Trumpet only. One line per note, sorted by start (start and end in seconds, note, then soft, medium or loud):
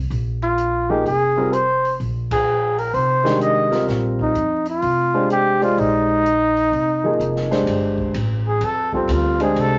0.43 0.92 F4 medium
0.90 1.06 G4 medium
1.07 1.54 G#4 medium
1.53 2.00 C5 medium
2.32 2.81 G#4 medium
2.79 2.96 A#4 medium
2.94 3.41 C5 medium
3.42 3.86 D#5 medium
4.22 4.65 D#4 medium
4.70 5.28 F4 medium
5.32 5.60 G4 loud
5.64 5.81 F4 medium
5.79 7.52 D#4 loud
8.48 8.66 G#4 medium
8.64 8.94 A4 loud
8.95 9.14 C4 medium
9.13 9.42 F4 medium
9.43 9.62 G#4 medium
9.61 9.79 A4 loud